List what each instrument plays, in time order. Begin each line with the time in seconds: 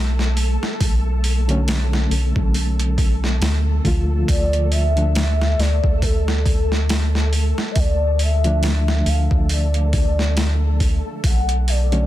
Already playing: analog synth bass B1, synth texture A3 A4
0.19 snare
0.37 open hi-hat
0.63 snare
0.81 analog synth bass B1, kick, open hi-hat
1.24 open hi-hat
1.48 reed electric piano D3 F#3 A3 C#4, closed hi-hat
1.68 snare, open hi-hat
1.93 snare
2.10 analog synth bass B1, open hi-hat
2.36 analog synth bass B1, kick
2.54 open hi-hat
2.79 closed hi-hat
2.98 kick, open hi-hat
3.24 snare
3.41 analog synth bass D2, snare, open hi-hat
3.84 analog synth bass D2, reed electric piano D3 F3 A3 F4, kick, open hi-hat
4.28 analog synth bass D2, soft synth lead D5, kick, open hi-hat
4.53 closed hi-hat
4.71 soft synth lead E5, open hi-hat
4.96 reed electric piano D3 F3 A3 D4, closed hi-hat
5.15 snare, open hi-hat
5.42 snare
5.58 analog synth bass D2, soft synth lead D5, snare, open hi-hat
5.84 analog synth bass D2, kick
6.02 soft synth lead A4, kick, open hi-hat
6.28 snare
6.46 kick, open hi-hat
6.72 snare
6.89 snare, open hi-hat
7.15 snare
7.33 open hi-hat
7.58 snare
7.71 soft synth lead E5
7.76 analog synth bass D2, soft synth lead D5, kick, open hi-hat
8.19 soft synth lead E5, open hi-hat
8.44 reed electric piano D3 F3 A3 D4, closed hi-hat
8.63 snare, open hi-hat
8.88 snare
9.06 analog synth bass D2, soft synth lead F5, open hi-hat
9.31 analog synth bass D2, kick
9.49 soft synth lead D5, open hi-hat
9.74 closed hi-hat
9.93 kick, open hi-hat
10.19 snare
10.37 snare, open hi-hat
10.80 kick, open hi-hat
11.24 analog synth bass B1, soft synth lead F#5, kick, open hi-hat
11.49 closed hi-hat
11.68 soft synth lead D5, open hi-hat
11.92 reed electric piano D3 F#3 A3 C#4, closed hi-hat